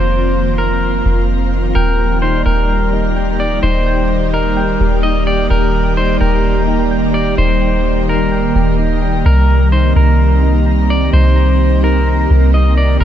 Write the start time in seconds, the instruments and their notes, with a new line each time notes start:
Already playing: 808-style bass F1, ambient pad D#3 F3 A#3 C4 F4, clean electric guitar C5
0.58 clean electric guitar A#4
1.05 808-style bass F1
1.75 808-style bass D#1, ambient pad D#3 G3 A#3 G4 D5, clean electric guitar A#4, synth keys G5
2.22 synth keys D#4, clean electric guitar C5
2.46 808-style bass D#1, clean electric guitar A#4, synth keys G5
2.93 synth keys D#4
3.16 synth keys G5
3.40 clean electric guitar D5
3.63 808-style bass D#1, synth keys D#4, clean electric guitar C5
3.86 synth keys G5
4.33 synth keys D#4, clean electric guitar A#4
4.57 synth keys G5
4.80 808-style bass D#1, synth keys G4
5.03 synth keys D#4, clean electric guitar D#5
5.27 clean electric guitar D5, synth keys G5
5.50 808-style bass D#1, clean electric guitar A#4, synth keys G5
5.97 synth keys D#4, clean electric guitar C5
6.21 808-style bass D#1, clean electric guitar A#4, synth keys G5
6.68 synth keys D#4
6.91 synth keys G5
7.14 clean electric guitar D5
7.38 808-style bass D#1, synth keys D#4, clean electric guitar C5
7.62 synth keys G5
8.08 synth keys D#4, clean electric guitar A#4
8.32 synth keys G5
8.55 808-style bass D#1, synth keys G4
8.79 synth keys D#4
9.02 synth keys G5
9.26 808-style bass C2, ambient pad C4 G4, clean electric guitar A#4, synth keys A#5
9.72 synth keys D#4, clean electric guitar C5
9.96 808-style bass C2, clean electric guitar A#4, synth keys A#5
10.43 synth keys D#4
10.66 synth keys A#5
10.90 clean electric guitar D5
11.13 808-style bass C2, synth keys D#4, clean electric guitar C5
11.36 synth keys A#5
11.83 synth keys D#4, clean electric guitar A#4
12.07 synth keys A#5
12.30 808-style bass C2, synth keys A#4
12.54 synth keys D#4, clean electric guitar D#5
12.77 clean electric guitar D5, synth keys A#5
13.00 808-style bass F1, ambient pad D#3 F3 A#3 F4, clean electric guitar A#4, synth keys A#5